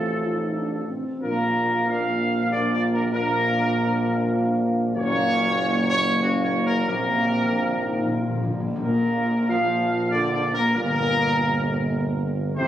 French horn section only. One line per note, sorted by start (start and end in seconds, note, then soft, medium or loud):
0.00 0.25 F4 medium
0.26 0.58 D#4 medium
0.59 0.91 D4 medium
0.89 1.20 C4 medium
1.22 1.84 D4 medium
1.22 1.84 F4 medium
1.87 2.46 D4 medium
1.87 2.46 F4 medium
2.51 3.08 D4 medium
2.51 3.09 F4 medium
3.12 4.93 D4 medium
3.12 4.93 F4 medium
4.96 6.17 C#4 medium
4.96 6.20 F#4 medium
6.21 6.82 C#4 medium
6.21 6.82 F#4 medium
6.86 7.41 C4 medium
6.86 7.41 F4 medium
7.53 7.82 D4 medium
7.84 8.17 D#4 medium
8.17 8.48 F4 medium
8.50 8.81 D4 medium
8.83 9.45 A#3 medium
9.49 10.08 F4 loud
10.13 10.32 D4 medium
10.33 10.52 D4 medium
10.54 10.73 A#3 medium
10.74 12.23 A#3 medium
12.58 12.68 C4 loud